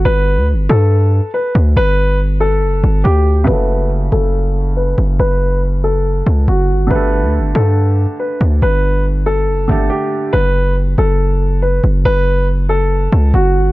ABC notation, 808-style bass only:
X:1
M:4/4
L:1/16
Q:1/4=140
K:F#phr
V:1 name="808-style bass" clef=bass
G,,,3 D,,3/2 G,,,3/2 G,,4- G,, z3 D,,2 | G,,,8 F,,,2 G,,,2 D,,4 | F,,,6 F,,,8 F,,,2 | F,,,8- F,,,2 C,,2 F,,,2 G,,,2 |
G,,,3 D,,3/2 G,,,3/2 G,,4- G,, z3 D,,2 | G,,,8 F,,,2 G,,,2 z4 | F,,,6 F,,,8 F,,,2 | F,,,8- F,,,2 C,,2 F,,,2 G,,,2 |]